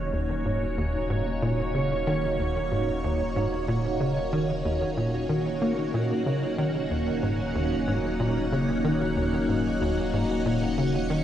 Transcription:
Already playing: sub bass D#1, string machine A#3 C#4 D#4 F#4 C#5, synth texture C#5
0.13 analog synth bass D#2
0.45 analog synth bass G#2
0.78 analog synth bass D#2
1.10 analog synth bass G#2
1.42 analog synth bass A#2
1.75 analog synth bass C#3
2.07 analog synth bass D#3
2.39 analog synth bass D#2
2.71 analog synth bass G#2
3.04 analog synth bass D#2
3.36 analog synth bass G#2
3.68 analog synth bass A#2
4.00 analog synth bass C#3
4.33 analog synth bass D#3
4.65 analog synth bass D#2
4.97 analog synth bass A#2
5.29 analog synth bass D#3
5.62 analog synth bass A#3
5.93 sub bass D#1, analog synth bass A#2, string machine F#5
6.26 analog synth bass C#3
6.58 analog synth bass D#3
6.91 analog synth bass D#2
7.23 analog synth bass G#2
7.55 analog synth bass D#2
7.88 analog synth bass G#2
8.20 analog synth bass A#2
8.52 analog synth bass C#3
8.84 analog synth bass D#3
9.16 analog synth bass D#2
9.49 analog synth bass G#2
9.81 analog synth bass D#2
10.13 analog synth bass G#2
10.46 analog synth bass A#2
10.78 analog synth bass C#3
11.10 analog synth bass D#3

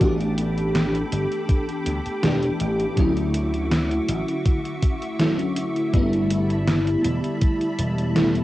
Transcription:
Already playing: string machine D6
0.00 slap bass A1, fm electric piano E3 A3 B3 D4 G4, string machine A4 G5 B5, kick, closed hi-hat
0.21 closed hi-hat
0.38 closed hi-hat
0.58 closed hi-hat
0.75 snare, closed hi-hat
0.95 closed hi-hat
1.12 slap bass G1, closed hi-hat
1.32 closed hi-hat
1.49 kick, closed hi-hat
1.69 closed hi-hat
1.86 slap bass D2, closed hi-hat
2.06 muted slap bass stroke, closed hi-hat
2.23 slap bass E1, fm electric piano E3 A3 B3 D4 G4, snare, closed hi-hat
2.43 closed hi-hat
2.60 slap bass A1, closed hi-hat
2.80 closed hi-hat
2.96 slap bass D2, fm electric piano D3 F#3 A3 C#4 E4, string machine F#4 E5 C#6, kick, closed hi-hat
3.17 closed hi-hat
3.34 closed hi-hat
3.54 closed hi-hat
3.71 snare, closed hi-hat
3.91 closed hi-hat
4.08 slap bass A1, closed hi-hat
4.28 closed hi-hat
4.45 kick, closed hi-hat
4.65 closed hi-hat
4.82 kick, closed hi-hat
5.02 closed hi-hat
5.19 fm electric piano D3 F#3 A3 C#4 E4, snare, closed hi-hat
5.39 closed hi-hat
5.56 closed hi-hat
5.76 closed hi-hat
5.92 slap bass G1, fm electric piano D3 G3 A3 B3 E4, string machine G3 A5 B5, kick, closed hi-hat
6.13 closed hi-hat
6.30 closed hi-hat
6.50 closed hi-hat
6.67 snare, closed hi-hat
6.87 closed hi-hat
7.04 slap bass E1, closed hi-hat
7.24 closed hi-hat
7.41 kick, closed hi-hat
7.61 closed hi-hat
7.79 slap bass E1, closed hi-hat
7.98 closed hi-hat
8.15 fm electric piano D3 G3 A3 B3 E4, snare, closed hi-hat
8.35 closed hi-hat

